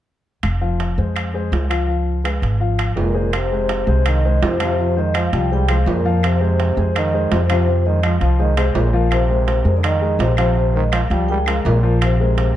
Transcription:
0.43 upright bass F1, high timbale, claves
0.61 grand piano F3 F4 F5
0.80 high timbale, low timbale
0.98 upright bass F2, grand piano G#3 G#4 C5
1.16 high timbale, claves
1.34 grand piano G#3 G#4 C5
1.52 upright bass C#2, high timbale, low timbale
1.69 grand piano F3 F4 F5, high timbale, claves
1.87 grand piano F3 F4 F5
2.24 grand piano G#3 G#4 B4, high timbale, low timbale, claves
2.42 upright bass G#1, high timbale
2.60 grand piano F3 F4 F5
2.79 high timbale, claves
2.96 upright bass F1, trombone A#2, grand piano G#3 G#4 B4, vibraphone A#4, low timbale
3.14 grand piano G#3 G#4 C5
3.33 trombone C3, vibraphone C5, high timbale, claves
3.51 grand piano G#3 G#4 C5
3.69 high timbale, low timbale
3.87 upright bass C2, grand piano G#3 G#4 C5
4.06 trombone D#3, vibraphone D#5, high timbale, claves
4.25 grand piano G#3 G#4 C5
4.42 upright bass F2, trombone C3, vibraphone C5, high timbale, low timbale
4.59 trombone C3, grand piano F3 F4 F5, high timbale, claves
4.78 grand piano F3 F4 F5
4.96 trombone D#3, grand piano G#3 G#4 C5, vibraphone D#5
5.14 trombone F3, vibraphone F5, high timbale, low timbale, claves
5.33 upright bass C2, grand piano F3 F4 F5, trombone G3, vibraphone G5, high timbale
5.51 trombone G3, grand piano G#3 G#4 C5, vibraphone G5
5.68 trombone F3, grand piano G#3 G#4 C5, vibraphone F5, high timbale, claves
5.86 upright bass F2, trombone A#2, vibraphone A#4, low timbale
6.05 grand piano F3 F4 F5
6.23 trombone C3, vibraphone C5, high timbale, claves
6.41 grand piano G#3 G#4 C5
6.60 high timbale, low timbale
6.77 upright bass F2, grand piano G#3 G#4 C5
6.96 trombone D#3, vibraphone D#5, high timbale, claves
7.13 grand piano G#3 G#4 C5
7.31 upright bass F2, trombone C3, vibraphone C5, high timbale, low timbale
7.50 trombone C3, grand piano F3 F4 F5, vibraphone C5, high timbale, claves
7.68 grand piano F3 F4 F5
7.86 trombone D#3, grand piano G#3 G#4 C5, vibraphone D#5
8.03 trombone F3, vibraphone F5, high timbale, low timbale, claves
8.21 upright bass C2, grand piano F3 F4 F5, trombone F3, vibraphone F5, high timbale
8.39 trombone D#3, grand piano G#3 G#4 C5, vibraphone D#5
8.57 trombone C3, grand piano G#3 G#4 C5, vibraphone C5, high timbale, claves
8.75 upright bass A#1, trombone A#2, vibraphone A#4, low timbale
8.93 grand piano F3 F4 F5
9.11 trombone C3, vibraphone C5, high timbale, claves
9.29 grand piano G#3 G#4 A#4
9.48 high timbale, low timbale
9.65 upright bass F2, grand piano G#3 G#4 A#4
9.77 trombone D3, vibraphone D5
9.83 trombone D#3, vibraphone D#5, high timbale, claves
10.01 grand piano G#3 G#4 A#4
10.19 upright bass A#1, trombone C3, vibraphone C5, high timbale, low timbale
10.37 trombone C3, grand piano F3 F4 F5, vibraphone C5, high timbale, claves
10.56 grand piano F3 F4 F5
10.74 trombone D#3, grand piano G#3 G#4 A#4, vibraphone D#5
10.92 trombone F3, vibraphone F5, high timbale, low timbale, claves
11.10 upright bass C#2, grand piano F3 F4 F5, trombone G3, vibraphone G5, high timbale
11.28 trombone G3, grand piano G#3 G#4 A#4, vibraphone G5
11.46 trombone F3, grand piano G#3 G#4 A#4, vibraphone F5, high timbale, claves
11.65 upright bass A#1, trombone A#2, vibraphone A#4, low timbale
11.83 grand piano F3 F4 F5
12.01 trombone C3, vibraphone C5, high timbale, claves
12.20 grand piano G#3 G#4 A#4
12.38 high timbale, low timbale

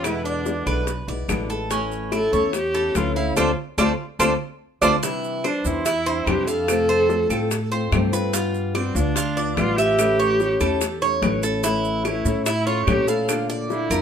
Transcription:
Already playing: upright bass E2
0.03 nylon-string guitar B2 D3 G#3 B3 E4, viola E4, cuban tres B4, high bongo, claves, maracas
0.24 viola D4, cuban tres D5, high bongo, maracas
0.46 nylon-string guitar D3 G#3 B3 E4, high bongo, maracas
0.66 upright bass B1, nylon-string guitar D3 G#3 B3 E4, cuban tres B4, high bongo, claves, maracas
0.87 muted nylon-string guitar stroke, high bongo, maracas
1.08 upright bass B1, nylon-string guitar G#3 B3 E4, cuban tres D5, high bongo, maracas
1.28 upright bass A1, nylon-string guitar B2 D3 G#3 B3 E4, high bongo, low bongo, claves, maracas
1.49 nylon-string guitar G#3 B3 E4, cuban tres A4, maracas
1.70 nylon-string guitar E3 A3 C#4 E4, cuban tres C#4, high bongo, maracas
1.92 maracas
2.11 nylon-string guitar E3 A3 C#4 E4, cuban tres E4, viola A4, high bongo, claves, maracas
2.32 upright bass E2, nylon-string guitar A3 C#4 E4, cuban tres C#5, maracas
2.53 viola G4, muted nylon-string guitar stroke, high bongo, maracas
2.74 nylon-string guitar A3 C#4 E4, cuban tres A4, maracas
2.95 upright bass D2, nylon-string guitar E3 A3 C#4 E4, viola F4, high bongo, low bongo, claves, maracas
3.16 nylon-string guitar A3 C#4 E4, viola E4, cuban tres F5, maracas
3.36 upright bass D2, nylon-string guitar A3 C4 D4, viola F4, cuban tres A4 C5 D5, high bongo, claves, maracas
3.78 upright bass D2, nylon-string guitar A3 C4 D4, viola F4, cuban tres A4 C5 D5, high bongo, claves, maracas
4.19 upright bass D2, nylon-string guitar A3 C4 D4, viola F4, cuban tres A4 C5 D5, high bongo, claves, maracas
4.82 upright bass D2, nylon-string guitar A3 C4 D4, viola F4, cuban tres A4 C5 D5, high bongo, claves, maracas
5.03 nylon-string guitar C3 E3 G3 D4 E4, cuban tres E4, high bongo, maracas
5.24 maracas
5.44 nylon-string guitar E3 G3 D4 E4, viola D4, cuban tres C5, high bongo, claves, maracas
5.65 upright bass E2, nylon-string guitar E3 G3 D4 E4, viola E4, maracas
5.86 cuban tres E4, muted nylon-string guitar stroke, high bongo, maracas
6.06 nylon-string guitar G3 D4 E4, cuban tres C5, maracas
6.26 upright bass F2, nylon-string guitar C3 E3 G3 D4 E4, viola G4, high bongo, low bongo, claves, maracas
6.47 nylon-string guitar G3 D4 E4, viola A4, cuban tres F5, maracas
6.68 nylon-string guitar C3 F3 A3 C4 F4, high bongo, claves, maracas
6.89 cuban tres C5, high bongo, maracas
7.09 nylon-string guitar F3 A3 C4 F4, high bongo, maracas
7.29 upright bass A2, nylon-string guitar F3 A3 C4 F4, cuban tres A4, high bongo, claves, maracas
7.51 muted nylon-string guitar stroke, high bongo, maracas
7.72 nylon-string guitar A3 C4 F4, cuban tres C5, maracas
7.92 upright bass G2, nylon-string guitar C3 F3 A3 C4 F4, high bongo, low bongo, claves, maracas
8.13 nylon-string guitar A3 C4 F4, cuban tres B4, high bongo, maracas
8.33 nylon-string guitar G3 B3 F4, cuban tres F4, high bongo, maracas
8.54 maracas
8.74 nylon-string guitar G3 B3 F4, viola C4, cuban tres D5, high bongo, claves, maracas
8.95 upright bass D2, nylon-string guitar B3 F4, viola D4, maracas
9.16 cuban tres F4, muted nylon-string guitar stroke, high bongo, maracas
9.37 nylon-string guitar B3 F4, cuban tres D5, maracas
9.57 upright bass A1, nylon-string guitar G3 B3 F4, viola F4, high bongo, low bongo, claves, maracas
9.77 nylon-string guitar B3 F4, viola G4, cuban tres E5, maracas
9.98 nylon-string guitar E3 A3 C#4 E4, high bongo, claves, maracas
10.19 cuban tres C#5, high bongo, maracas
10.39 nylon-string guitar E3 A3 C#4 E4, high bongo, maracas
10.60 upright bass E2, nylon-string guitar A3 C#4 E4, cuban tres A4, high bongo, claves, maracas
10.81 muted nylon-string guitar stroke, high bongo, maracas
11.02 nylon-string guitar A3 C#4 E4, cuban tres C#5, maracas
11.22 upright bass A1, nylon-string guitar E3 A3 C#4 E4, high bongo, low bongo, claves, maracas
11.43 nylon-string guitar A3 C#4 E4, cuban tres A4, high bongo, maracas
11.63 nylon-string guitar E3 A3 C#4 E4, cuban tres E4, high bongo, maracas
11.84 maracas
12.05 nylon-string guitar E3 A3 C#4 E4, viola E4, cuban tres C#5, high bongo, claves, maracas
12.25 upright bass A2, nylon-string guitar A3 C#4 E4, maracas
12.46 viola E4, cuban tres E4, muted nylon-string guitar stroke, high bongo, maracas
12.66 nylon-string guitar A3 C#4 E4, viola F4, cuban tres C#5, maracas
12.86 upright bass A#2, nylon-string guitar E3 A3 C#4 E4, viola G4, high bongo, low bongo, claves, maracas
13.08 nylon-string guitar A3 C#4 E4, viola A4, cuban tres F5, maracas
13.28 nylon-string guitar D3 A#3 D4 F4, high bongo, claves, maracas
13.50 cuban tres D5, high bongo, maracas
13.70 nylon-string guitar D3 A#3 D4 F4, viola E4, high bongo, maracas
13.90 upright bass F2, nylon-string guitar A#3 D4 F4, cuban tres A#4, high bongo, claves, maracas

